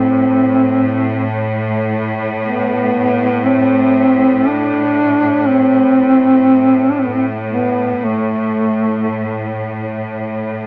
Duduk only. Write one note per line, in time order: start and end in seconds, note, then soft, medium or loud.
0.00 1.42 C4 medium
2.44 3.47 B3 medium
3.45 4.50 C4 medium
4.48 5.49 D4 medium
5.48 6.92 C4 loud
6.91 7.01 D4 medium
6.99 7.08 C4 medium
7.07 7.16 B3 medium
7.15 7.25 C4 medium
7.51 8.06 B3 medium
8.04 9.69 A3 medium